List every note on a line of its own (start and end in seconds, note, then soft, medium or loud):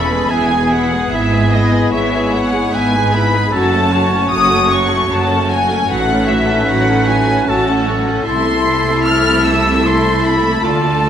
0.00 0.21 E1 medium
0.00 0.21 E2 medium
0.00 1.06 E3 medium
0.00 0.11 B3 soft
0.00 3.48 B3 medium
0.00 0.33 C#4 medium
0.00 0.11 E4 soft
0.00 0.32 A4 medium
0.00 0.31 B5 medium
0.00 0.32 B5 medium
0.07 0.29 B4 soft
0.07 0.30 G#5 soft
0.13 0.32 G#3 soft
0.13 0.32 G#4 soft
0.28 1.02 E1 medium
0.28 1.02 E2 medium
0.28 1.11 B3 medium
0.28 0.50 B3 soft
0.28 0.50 E4 soft
0.28 0.49 G#4 soft
0.28 1.10 G#4 medium
0.28 0.48 E5 soft
0.28 0.71 G#5 medium
0.28 0.73 G#5 medium
0.49 0.72 G#4 soft
0.49 0.70 B4 soft
0.49 0.70 G#5 soft
0.53 0.72 G#3 soft
0.69 0.92 B3 soft
0.69 0.92 E4 soft
0.69 0.90 G#4 soft
0.69 0.90 E5 soft
0.69 1.11 F#5 medium
0.69 1.12 F#5 medium
0.91 1.13 G#3 soft
0.91 1.13 G#4 soft
0.91 1.11 B4 soft
0.91 1.11 G#5 soft
1.10 1.83 G#1 medium
1.10 1.82 G#2 medium
1.10 3.48 G#3 medium
1.10 2.74 E4 medium
1.10 1.30 G#4 soft
1.10 1.90 G#4 medium
1.10 1.30 E5 medium
1.10 1.55 E5 medium
1.10 1.52 E5 medium
1.14 1.32 B3 medium
1.14 1.32 E4 soft
1.32 1.52 G#3 soft
1.32 1.52 G#4 soft
1.32 1.52 B4 soft
1.32 1.52 G#5 soft
1.51 1.73 B3 soft
1.51 1.73 E4 soft
1.51 1.72 G#4 soft
1.51 1.92 D#5 medium
1.51 1.93 D#5 medium
1.51 1.72 E5 soft
1.72 1.93 G#3 soft
1.72 1.93 G#4 soft
1.72 1.92 B4 soft
1.72 1.92 G#5 soft
1.92 2.63 G#1 medium
1.92 2.64 G#2 medium
1.92 2.12 E4 soft
1.92 2.12 G#4 soft
1.92 2.74 C#5 medium
1.92 2.32 E5 medium
1.92 2.12 E5 soft
1.92 2.33 E5 medium
1.96 2.13 B3 soft
2.13 2.34 G#3 soft
2.13 2.34 G#4 soft
2.13 2.33 B4 soft
2.13 2.33 G#5 soft
2.33 2.54 B3 soft
2.33 2.53 E4 soft
2.33 2.53 G#4 soft
2.33 2.53 E5 soft
2.33 2.74 F#5 medium
2.33 2.77 F#5 medium
2.51 2.73 G#3 soft
2.51 2.73 G#4 soft
2.51 2.72 B4 soft
2.51 2.72 G#5 soft
2.72 3.43 G#1 medium
2.72 3.44 G#2 medium
2.72 2.93 B3 soft
2.72 3.56 D#4 medium
2.72 2.93 E4 soft
2.72 2.91 G#4 soft
2.72 3.51 B4 medium
2.72 2.91 E5 soft
2.72 3.14 G#5 medium
2.72 3.16 G#5 medium
2.93 3.14 G#3 soft
2.93 3.14 G#4 soft
2.93 3.13 B4 soft
2.93 3.13 G#5 soft
3.12 3.34 B3 soft
3.12 3.34 E4 soft
3.12 3.32 G#4 soft
3.12 3.33 E5 soft
3.12 3.57 B5 medium
3.12 3.54 B5 medium
3.34 3.54 G#3 soft
3.34 3.54 G#4 soft
3.34 3.53 B4 soft
3.34 3.53 G#5 soft
3.51 4.22 F#1 medium
3.51 4.22 F#2 medium
3.51 3.71 F#3 medium
3.51 8.08 A3 medium
3.51 8.08 C#4 medium
3.51 4.34 C#4 medium
3.51 3.71 F#4 medium
3.51 3.71 F#4 soft
3.51 3.94 A4 medium
3.51 3.71 C#5 medium
3.51 4.30 A5 medium
3.51 4.05 A5 medium
3.71 3.92 A3 soft
3.71 3.92 C#4 soft
3.71 3.91 A4 soft
3.71 3.91 F#5 soft
3.91 4.12 F#3 soft
3.91 4.11 F#4 soft
3.91 4.12 F#4 soft
3.91 4.11 C#5 soft
3.91 5.62 C#5 medium
4.10 4.32 A3 soft
4.10 4.32 C#4 soft
4.10 4.31 A4 soft
4.10 4.30 F#5 soft
4.27 4.47 F#4 soft
4.27 4.48 C#5 soft
4.27 4.69 D#6 medium
4.31 5.01 F#1 medium
4.31 5.01 F#2 medium
4.31 4.51 F#3 soft
4.31 5.63 F#4 medium
4.31 4.51 F#4 soft
4.31 4.74 D#6 medium
4.48 4.71 A3 soft
4.48 4.69 A4 soft
4.48 4.69 F#5 soft
4.53 4.71 C#4 soft
4.68 4.89 F#4 soft
4.68 4.89 C#5 soft
4.68 5.10 C#6 medium
4.73 4.92 F#3 soft
4.73 4.92 F#4 soft
4.73 5.14 C#6 medium
4.87 5.08 A4 soft
4.87 5.09 F#5 medium
4.92 5.11 A3 soft
4.92 5.11 C#4 soft
5.08 5.79 F#1 medium
5.08 5.80 F#2 medium
5.08 5.27 F#4 soft
5.08 5.29 F#4 soft
5.08 5.27 C#5 soft
5.08 5.50 A5 medium
5.12 5.29 F#3 soft
5.12 5.54 A5 medium
5.27 5.48 A4 soft
5.27 5.48 F#5 soft
5.31 5.50 A3 soft
5.31 5.50 C#4 soft
5.46 5.67 F#4 medium
5.46 5.67 C#5 soft
5.46 5.88 G#5 medium
5.52 5.70 F#3 soft
5.52 5.70 F#4 soft
5.52 5.90 G#5 medium
5.68 5.90 A3 soft
5.68 5.90 C#4 soft
5.68 5.88 A4 soft
5.68 5.88 F#5 soft
5.85 6.58 A1 medium
5.85 6.59 A2 medium
5.85 7.48 D#4 medium
5.85 6.05 F#4 medium
5.85 7.50 B4 medium
5.85 6.05 C#5 medium
5.85 6.28 F#5 medium
5.90 6.08 F#3 medium
5.90 6.08 F#4 medium
5.90 6.30 F#5 medium
6.05 6.27 A4 soft
6.05 6.26 F#5 soft
6.09 6.29 A3 soft
6.09 6.29 C#4 soft
6.26 6.48 F#3 soft
6.26 6.47 F#4 medium
6.26 6.48 F#4 soft
6.26 6.47 C#5 medium
6.26 6.68 E5 medium
6.26 6.70 E5 medium
6.46 6.68 A3 soft
6.46 6.68 C#4 soft
6.46 6.67 A4 medium
6.46 6.67 F#5 soft
6.66 7.38 A1 medium
6.66 7.38 A2 medium
6.66 6.85 F#4 soft
6.66 6.85 C#5 soft
6.66 7.07 F#5 medium
6.66 7.12 F#5 medium
6.71 6.88 F#3 medium
6.71 6.88 F#4 medium
6.85 7.07 A4 soft
6.85 7.06 F#5 soft
6.90 7.09 A3 soft
6.90 7.09 C#4 soft
7.05 7.26 F#4 soft
7.05 7.27 C#5 medium
7.05 7.47 G#5 medium
7.10 7.29 F#3 soft
7.10 7.29 F#4 soft
7.10 7.50 G#5 medium
7.27 7.48 A3 soft
7.27 7.48 C#4 soft
7.27 7.47 A4 soft
7.27 7.47 F#5 soft
7.46 8.16 A1 medium
7.46 8.16 A2 medium
7.46 7.66 F#3 medium
7.46 8.22 C#4 medium
7.46 7.65 F#4 medium
7.46 7.66 F#4 soft
7.46 8.26 A4 medium
7.46 7.66 C#5 soft
7.46 7.85 A5 medium
7.46 7.87 A5 medium
7.67 7.87 A3 soft
7.67 7.87 C#4 medium
7.67 7.87 A4 soft
7.67 7.86 F#5 soft
7.86 8.06 F#3 soft
7.86 8.06 F#4 soft
7.86 8.06 C#5 medium
8.06 8.26 A3 soft
8.06 8.26 C#4 soft
8.06 8.26 A4 soft
8.06 8.26 F#5 soft
8.23 10.59 C2 medium
8.23 10.59 C3 medium
8.23 11.09 A3 medium
8.23 9.78 E4 medium
8.23 10.59 E4 medium
8.23 10.63 E4 medium
8.23 9.00 C6 medium
8.27 11.09 A4 medium
8.27 9.80 A4 medium
8.27 10.60 E5 medium
8.27 9.08 C6 medium
9.04 9.44 F6 medium
9.04 9.47 F6 medium
9.44 9.84 E6 medium
9.44 9.88 E6 medium
9.84 10.64 E4 medium
9.84 10.61 A4 medium
9.84 10.29 C6 medium
9.84 10.25 C6 medium
10.25 10.64 B5 medium
10.25 10.67 B5 medium
10.62 11.09 D2 medium
10.62 11.09 D3 medium
10.62 11.09 F4 medium
10.62 11.09 A4 medium
10.62 11.09 D5 medium
10.62 11.09 A5 medium